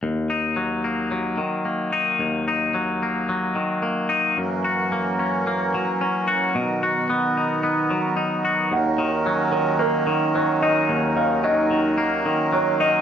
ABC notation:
X:1
M:4/4
L:1/8
Q:1/4=110
K:Ebm
V:1 name="Felt piano"
z8 | z8 | z8 | z8 |
g2 z d B2 d e- | e f e2 z2 d e |]
V:2 name="Harmonium"
z8 | z8 | [GB]8- | [GB]8 |
[GB]8- | [GB]8 |]
V:3 name="Harmonium" clef=bass
z8 | z8 | [_F,D]8 | [^D,=B,]8 |
[E,D]8- | [E,D]8 |]
V:4 name="Clean electric guitar" clef=bass
E,, E G, B, G, E, B, E | E,, E G, B, G, E, B, E | G,, G B, D B, G, D G | =B,, ^F =B, ^D B, ^F, D F |
E,, E, G, E, B, E, G, E | E,, E, G, E, B, E, G, E |]